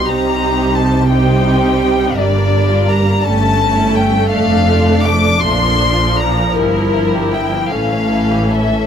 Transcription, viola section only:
\new Staff \with { instrumentName = "Viola section" } { \time 6/8 \key c \dorian \tempo 4. = 55 << { ees'4. ees'4. | \key a \phrygian d'4. cis'4. | d'2. | e'4. cis'4. | } \\ { g4. g4. | g4. a4.~ | a4. f4.~ | f4. e4. | } >> }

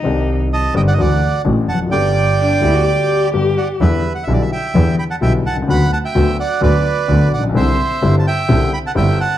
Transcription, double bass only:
\new Staff \with { instrumentName = "Double bass" } { \clef bass \time 4/4 \key g \major \tempo 4 = 128 c,4. g,,8 d,8 r8 a,,8 f,,8 | g,,4. d,8 r2 | \key e \minor e,8 r8 b,,8 r8 e,8 r8 b,,8 c,8 | d,8 r8 d,8 r8 d,8 r8 d,8 ais,,8 |
c,8 r8 g,,8 r8 c,8 r8 g,,8 r8 | }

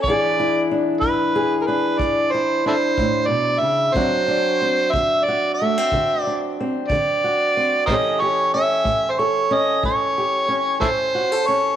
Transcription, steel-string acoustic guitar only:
\new Staff \with { instrumentName = "Steel-string acoustic guitar" } { \time 12/8 \key d \major \tempo 4. = 61 << { <e d' e' gis'>8 e'8 d'4 gis'8 d'4 e'8 d'2 | <fis c' d' fis'>8 d'8 c'4 fis'8 a16 c'8. d'8 c'4 fis'8 c'8 | <e cis' g' a'>8 g'8 cis'4 a'8 cis'4 g'8 cis'4 fis'16 a'16 cis'8 | } \\ { e,4 r8 e,4 r8 e,4 r8 a,8 b,8 cis8 | d4 r8 d4 r8 d4 r8 d4 r8 | a,4 r8 a,4 r8 a,4 r8 a,4 r8 | } >> }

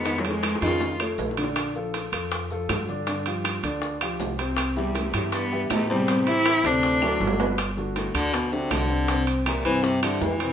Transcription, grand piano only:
\new Staff \with { instrumentName = "Grand piano" } { \time 4/4 \key g \major \tempo 4 = 160 <ees ees' ees''>8 <f gis' cis''>4 <ees ees' ees''>4 <a a' cis''>4 <d d' d''>8~ | <d d' d''>8 <f f' a'>4 <f f' a'>4 <f f' a'>4 <d d' d''>8 | <d d' d''>8 <f f' g'>4 <d d' d''>4 <f f' g'>4 <c c' c''>8~ | <c c' c''>8 <e e' g'>4 <e e' g'>4 <e e' g'>4 <c c' c''>8 |
<c c' c''>8 <e e' g'>4 <c c' c''>4 <fis fis' a'>4 <b, b b'>8 | r8 <d d' fis'>4 <d d' fis'>4 <d d' fis'>4 <c c' c''>8 | <c c' c''>4 <e e' g'>8 <c c' c''>4 <e e' g'>4 <c c' c''>8 | }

